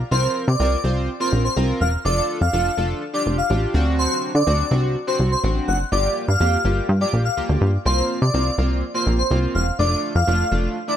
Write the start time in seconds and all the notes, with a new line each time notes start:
0.11 C2 C4 F4 A#4 C5
0.48 C3 D5
0.59 C2 C4 F4 A#4
0.84 C2 C4 F4 C5
1.20 C4 F4 A#4 C5
1.32 A#1
1.45 C5
1.56 C2 C4 F4 A#4
1.81 E1 F5
2.05 F1 D4 F4 A4 D5
2.41 F2 F5
2.53 F1 D4 F4 A4
2.77 F1 D4 F4 A4
3.13 D4 F4 G4 D5
3.26 F1
3.38 F5
3.50 A1 D4 F4 G4
3.74 D2 C4 D4 F#4
3.98 C5
4.35 D3 D5
4.47 D2 C4 D4 F#4
4.71 C2 C4 D4 F#4
5.07 C4 D4 F#4 C5
5.19 C2
5.32 C5
5.43 A1 C4 D4 F#4
5.68 F#1 F#5
5.92 G1 A#3 F4 G4 D5
6.28 G2 F5
6.40 F2 A#3 F4 G4
6.64 G1 A#3 F4 G4
6.89 G2
7.01 A#3 F4 G4 D5
7.13 A#1
7.25 F5
7.37 D2 A#3 F4 G4
7.49 D2
7.61 G2
7.85 C2 A#3 C4 F4 C5
8.22 C3 D5
8.34 C2 A#3 C4 F4
8.58 C2 A#3 C4 F4
8.94 A#3 C4 F4 C5
9.06 A#1
9.19 C5
9.30 C2 A#3 C4 F4
9.55 E1 F5
9.79 F1 A3 D4 F4 D5
10.15 F2 F5
10.27 F1 A3 D4 F4
10.51 F1 A3 D4 F4
10.88 A3 D4 E4 D5